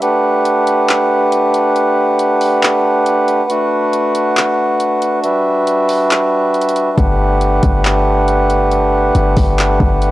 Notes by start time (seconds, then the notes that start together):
0.02 A3 D4 G4 B4 F#5, closed hi-hat
0.45 closed hi-hat
0.67 closed hi-hat
0.89 clap, closed hi-hat
1.32 closed hi-hat
1.54 closed hi-hat
1.76 closed hi-hat
2.19 closed hi-hat
2.41 open hi-hat
2.63 clap, closed hi-hat
3.06 closed hi-hat
3.28 closed hi-hat
3.50 A3 D4 F#4, closed hi-hat
3.93 closed hi-hat
4.15 closed hi-hat
4.37 clap, closed hi-hat
4.80 closed hi-hat
5.02 closed hi-hat
5.24 G3 B4 E5, closed hi-hat
5.67 closed hi-hat
5.89 open hi-hat
6.11 clap, closed hi-hat
6.54 closed hi-hat
6.61 closed hi-hat
6.69 closed hi-hat
6.76 closed hi-hat
6.98 G1 A3 G4 B4 F#5, kick, closed hi-hat
7.41 closed hi-hat
7.63 G1, kick, closed hi-hat
7.85 clap, closed hi-hat
8.28 closed hi-hat
8.50 closed hi-hat
8.72 closed hi-hat
9.15 G1, closed hi-hat
9.37 G1, kick, open hi-hat
9.59 clap, closed hi-hat
9.80 G1, kick
10.02 closed hi-hat